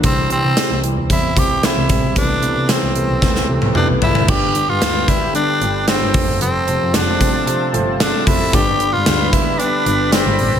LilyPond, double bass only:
\new Staff \with { instrumentName = "Double bass" } { \clef bass \time 4/4 \key g \mixolydian \tempo 4 = 113 c,8 r16 c16 r16 c,16 r16 d,16 e,8 c,8 r16 c,16 a,,16 b,,16 | c,8 r16 c16 r16 c,16 r16 b,,16 d,8 c,8 r16 b,,16 g,,16 f,,16 | g,,8 r16 g,16 d,8 r4 g,,8 r16 g,,16 f,,16 g,,16 | f,,8 r16 f,16 f,,8 r4 g,,8 r8 f,,8 |
g,,8 r16 g,16 d,8 r4 g,,8 r16 g,,16 a,,16 b,,16 | }